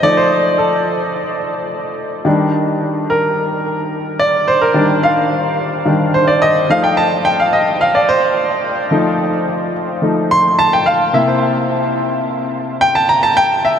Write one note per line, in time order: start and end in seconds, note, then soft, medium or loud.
0.00 0.03 F3 medium
0.00 2.21 F3 medium
0.00 0.03 A3 soft
0.00 2.21 A3 soft
0.00 0.04 D#4 medium
0.00 2.22 D#4 medium
0.00 0.17 C5 medium
0.00 0.18 D5 loud
0.00 2.27 D#5 loud
0.17 0.60 C5 medium
0.58 1.38 A4 medium
2.25 2.62 D#3 medium
2.25 2.63 G3 medium
2.25 2.63 D4 medium
3.10 4.24 A#4 medium
4.19 4.48 D5 medium
4.48 4.61 C5 medium
4.61 5.04 A#4 medium
4.74 5.84 D#3 medium
4.74 5.85 G3 soft
4.74 5.85 D4 medium
5.03 5.83 F5 medium
5.85 6.11 D#3 soft
5.85 6.11 G3 soft
5.85 6.11 D4 medium
6.14 6.29 C5 medium
6.28 6.42 D5 medium
6.42 6.71 D#5 medium
6.69 7.49 F3 medium
6.69 7.49 A3 soft
6.69 7.50 D#4 medium
6.69 6.85 F5 loud
6.84 6.98 G5 medium
6.97 7.26 A5 loud
7.25 7.40 G5 loud
7.40 7.54 F5 medium
7.53 7.82 D#5 medium
7.81 7.95 F5 medium
7.95 8.09 D5 medium
8.09 8.88 C5 loud
8.91 9.71 F3 medium
8.91 9.71 A3 medium
8.91 9.72 D#4 medium
10.02 10.28 F3 soft
10.02 10.28 A3 soft
10.02 10.28 D#4 medium
10.31 10.60 C6 loud
10.59 10.73 A5 loud
10.73 10.87 G5 medium
10.86 11.15 F5 medium
11.13 11.51 C3 medium
11.13 11.51 A#3 soft
11.13 11.51 E4 medium
11.13 11.27 E5 medium
11.28 11.54 C5 medium
12.81 12.95 G5 loud
12.95 13.09 A5 medium
13.09 13.23 A#5 loud
13.23 13.37 A5 loud
13.37 13.65 G5 loud
13.65 13.79 E5 loud